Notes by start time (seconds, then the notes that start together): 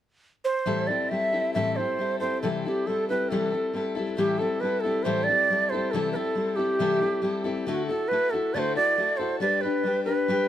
0.45 C5
0.66 A2 E3 G3 C4 E4 A4
0.87 C4 E4 A4 D5
0.92 G3
1.09 G3 C4 E4 E5
1.14 A4
1.32 G3 C4 E4 A4
1.54 A2 E3 G3 C4 E4 A4 E5
1.76 C4 E4 A4 C5
1.81 G3
1.99 G3 C4 E4 A4
2.20 G3 C4 E4 A4 C5
2.42 C3 E3 G3 C4 E4 A4
2.65 G3 C4 E4 G4 A4
2.87 G3 C4 E4 A4
3.09 G3 C4 E4 A4 B4
3.29 C3 E3 G3 C4 E4 A4
3.52 G3 C4 E4 A4
3.73 G3 C4 E4 A4
3.95 G3 C4 E4 A4
4.17 A2 E3 G3 C4 E4 G4 A4
4.39 G3 C4 E4 A4
4.60 G3 C4 E4 B4
4.65 A4
4.80 A4
4.85 G3 C4 E4
5.03 A2 E3 G3 C4 E4 A4 C5
5.24 D5
5.28 G3 C4 E4 A4
5.50 G3 C4 E4 A4
5.70 E4 A4 C5
5.75 G3 C4
5.91 C3 E3 G3 C4 E4 A4
5.96 A4
6.12 A4 B4
6.16 G3 C4 E4
6.35 G3 C4 E4 A4
6.56 G3 C4 E4 G4 A4
6.79 C3 E3 G3 C4 E4 A4
7.01 G3 C4 E4 A4
7.22 G3 C4 E4 A4
7.44 G3 C4 E4 A4
7.67 D3 A3 E4 F#4 A4
7.87 F#4 A4
7.91 E4
8.08 A3 B4
8.13 E4 F#4 A4
8.30 F#4 A4
8.35 E4
8.54 D3 A3 E4 F#4 A4 D5
8.59 C5
8.75 E4 F#4 A4 D5
8.98 A3 E4 F#4 A4
9.17 A4 C5
9.21 E4 F#4
9.40 G3 D4 G4 B4 D5
9.61 G4 B4
9.66 D4
9.83 G3 D4 G4 B4
10.04 G4 B4
10.09 D4
10.28 G3 D4 G4 B4